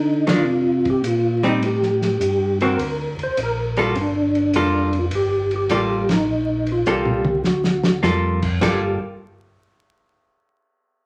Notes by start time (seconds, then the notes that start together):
Already playing: D3 D#4
0.27 D#3 A#3 D4, snare, ride
0.31 F4
0.44 C3
0.85 kick, ride
0.90 G4
1.02 A#2, hi-hat pedal, ride
1.07 F4
1.43 G3 C4 D#4, ride
1.48 D#4
1.60 A2, ride
1.66 G4
1.82 snare
2.02 snare, ride
2.20 G2, hi-hat pedal, ride
2.61 D3 A#3 C4 F#4 A#4, ride
2.79 D2, ride
3.19 D2, ride
3.23 C5
3.37 A#1, hi-hat pedal, ride
3.43 A#4
3.77 G3 A#3 F4 A4, ride
3.82 F#4
3.95 G1 C#4, ride
4.01 D4
4.35 ride
4.53 F1 G3 A#3 F4 A4, hi-hat pedal, ride
4.93 ride
4.99 F4
5.11 G1, ride
5.15 G4
5.51 ride
5.56 G4
5.69 A1 G3 A#3 F4 A4, hi-hat pedal, ride
5.75 G4
6.09 snare, ride
6.13 D#4
6.27 A#1
6.67 ride
6.72 F4
6.86 C2 G3 A#3 F4 A4, hi-hat pedal
6.90 G4
7.06 mid tom
7.25 high tom
7.44 D2 F#4, snare
7.64 snare
7.83 snare
8.03 F2 G3 A#3 F4 A4, snare, hi-hat pedal
8.42 kick, crash
8.61 G1 G3 A#3 F4 G4 A4, kick, snare, crash